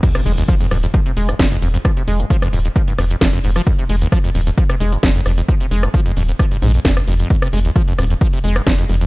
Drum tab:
CC |x---------------|----------------|----------------|----------------|
HH |xxoxxxoxxxoxxxox|xxoxxxoxxxoxxxox|xxoxxxoxxxoxxxox|xxoxxxoxxxoxxxox|
SH |x-xxx-xxx-xxx-xx|x-xxx-xxx-xx--xx|x-xxx-xxx-xx--xx|x-xxx-xxx-xxx-xx|
SD |-r----r----ro---|r----r----r-o--r|----r----r--o-r-|---r----r---or--|
BD |o---o---o---o---|o---o---o---o---|o---o---o---o---|o---o---o---o---|

CC |----------------|
HH |xxoxxxoxxxoxxxox|
SH |x-xxx-xxx-xxx-xx|
SD |-r----r----ro---|
BD |o---o---o---o---|